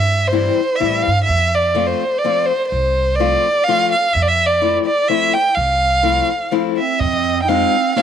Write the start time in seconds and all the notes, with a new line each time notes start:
Already playing: G2 E5
0.27 C5
0.32 E3 G3 C4 E4
0.76 E5
0.80 A2 E3 G3 C4 E4
1.02 F5
1.07 G2
1.24 E5
1.29 F2
1.54 D5
1.75 F3 A3 C4 F4
1.86 C5
2.18 D5
2.24 F3 A3 C4 F4
2.46 C5
2.68 C5
2.72 C2
3.15 D5
3.19 F3 A3 C4 F4
3.64 F5
3.68 F3 A3 C4 F4
3.92 F5
4.13 F2 E5
4.22 D5
4.28 E5
4.46 D5
4.61 F3 A3 C4 E4
4.86 D5
5.08 F3 A3 C4 E4 E5
5.33 G5
5.55 C2 F5
6.03 F3 A3 C4 E4
6.51 F3 A3 C4 E4
6.77 C4 E5
7.00 F2 C4 D#5, kick, ride
7.42 D#4 G5
7.48 G#3 C4 D#4 F4 F5, ride
7.95 G#3 C4 D#4 F4 F5, snare, ride